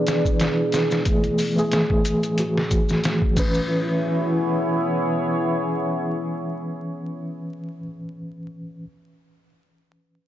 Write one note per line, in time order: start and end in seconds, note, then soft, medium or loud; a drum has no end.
0.00 1.06 E3 medium
0.00 1.01 B3 medium
0.00 1.07 D4 medium
0.00 3.33 E4 medium
0.00 1.03 G#4 medium
0.00 1.07 G#4 medium
0.00 1.03 B4 loud
0.00 1.03 D5 medium
0.07 snare medium
0.07 closed hi-hat medium
0.07 maracas medium
0.25 kick medium
0.25 maracas soft
0.40 snare loud
0.40 closed hi-hat medium
0.40 maracas soft
0.72 snare medium
0.72 closed hi-hat medium
0.72 maracas medium
0.91 snare medium
0.91 maracas soft
1.05 1.26 E3 medium
1.05 3.34 A3 medium
1.05 1.27 A3 medium
1.05 3.34 F#4 medium
1.05 1.27 G#4 medium
1.05 3.34 C#5 medium
1.05 kick loud
1.05 closed hi-hat medium
1.05 maracas soft
1.24 closed hi-hat soft
1.38 open hi-hat medium
1.38 maracas medium
1.56 2.34 E3 medium
1.56 2.34 A3 medium
1.56 2.35 G#4 loud
1.56 maracas soft
1.72 snare loud
1.72 closed hi-hat medium
1.72 maracas soft
1.90 kick medium
2.05 closed hi-hat medium
2.05 maracas medium
2.23 closed hi-hat soft
2.23 maracas soft
2.38 2.58 E3 medium
2.38 2.59 A3 medium
2.38 2.59 F#4 medium
2.38 closed hi-hat medium
2.38 maracas soft
2.57 snare soft
2.71 kick medium
2.71 closed hi-hat medium
2.71 maracas medium
2.89 snare soft
2.89 maracas soft
3.04 snare loud
3.04 closed hi-hat medium
3.04 maracas soft
3.22 kick medium
3.35 7.78 E3 medium
3.35 7.09 B3 medium
3.35 7.79 C#4 medium
3.35 7.09 E4 medium
3.35 7.09 G#4 medium
3.35 7.09 C#5 medium
3.35 kick medium
3.35 crash medium
3.35 maracas medium
3.39 7.81 B4 medium
3.55 maracas soft